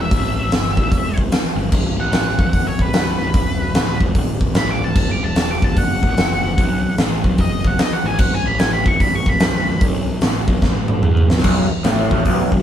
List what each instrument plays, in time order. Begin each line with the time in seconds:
0.01 lead electric guitar E5
0.11 picked electric bass A1, kick, open hi-hat
0.49 picked electric bass G1, snare, open hi-hat
0.77 picked electric bass A1, kick
0.92 picked electric bass E1, kick, open hi-hat
1.18 picked electric bass E1, kick
1.32 snare, open hi-hat
1.56 picked electric bass G1
1.72 picked electric bass B0, kick, crash
1.96 picked electric bass A1, lead electric guitar F#5
2.13 snare, open hi-hat
2.39 picked electric bass B0, kick
2.53 picked electric bass B0, lead electric guitar F#5, kick, open hi-hat
2.67 lead electric guitar C#5
2.79 picked electric bass D1, lead electric guitar B4, kick
2.93 picked electric bass B0, snare, open hi-hat
3.19 picked electric bass B0
3.34 picked electric bass E1, kick, open hi-hat
3.74 picked electric bass D1, snare, open hi-hat
4.00 picked electric bass E1, kick
4.15 picked electric bass D1, kick, open hi-hat
4.41 kick
4.54 picked electric bass A1, lead electric guitar B5, snare, open hi-hat
4.71 lead electric guitar D6
4.81 picked electric bass D1, lead electric guitar A5
4.95 picked electric bass F#1, lead electric guitar A5, kick, crash
5.11 lead electric guitar D6
5.20 picked electric bass E1
5.24 lead electric guitar A5
5.36 lead electric guitar A5, snare, open hi-hat
5.51 lead electric guitar D6
5.62 picked electric bass F#1, lead electric guitar A5, kick
5.76 picked electric bass F#1, lead electric guitar F#5, kick, open hi-hat
6.02 picked electric bass A1, kick
6.16 picked electric bass F#1, snare, open hi-hat
6.42 picked electric bass F#1
6.58 picked electric bass B1, kick, open hi-hat
6.97 picked electric bass A1, snare, open hi-hat
7.24 picked electric bass B1, kick
7.38 picked electric bass F#1, lead electric guitar D#5, kick, open hi-hat
7.64 picked electric bass F#1, lead electric guitar F#5, kick
7.79 lead electric guitar D#5, snare, open hi-hat
7.93 lead electric guitar F#5
8.04 picked electric bass A1, lead electric guitar G#5
8.19 picked electric bass B0, lead electric guitar F#5, kick, crash
8.34 lead electric guitar G#5
8.45 picked electric bass A1, lead electric guitar B5
8.59 lead electric guitar G#5, snare, open hi-hat
8.73 lead electric guitar B5
8.86 picked electric bass B0, lead electric guitar C#6, kick
9.00 picked electric bass B0, lead electric guitar B5, kick, open hi-hat
9.15 lead electric guitar C#6
9.26 picked electric bass D1, lead electric guitar B5, kick
9.40 picked electric bass B0, snare, open hi-hat
9.67 picked electric bass B0
9.81 picked electric bass B1, kick, open hi-hat
10.21 picked electric bass A1, snare, open hi-hat
10.48 picked electric bass B1, kick
10.61 picked electric bass A1, kick, snare
10.88 mid tom
11.02 picked electric bass E2, mid tom
11.17 mid tom
11.28 picked electric bass A1, snare
11.38 snare
11.43 picked electric bass B0, overdriven electric guitar B1, kick, crash
11.69 muted picked electric bass stroke, muted overdriven electric guitar stroke
11.83 picked electric bass A1, overdriven electric guitar A2, snare, open hi-hat
12.11 picked electric bass A1, overdriven electric guitar A2, kick
12.25 picked electric bass B0, overdriven electric guitar B1, kick, open hi-hat
12.52 picked electric bass B0, overdriven electric guitar B1, kick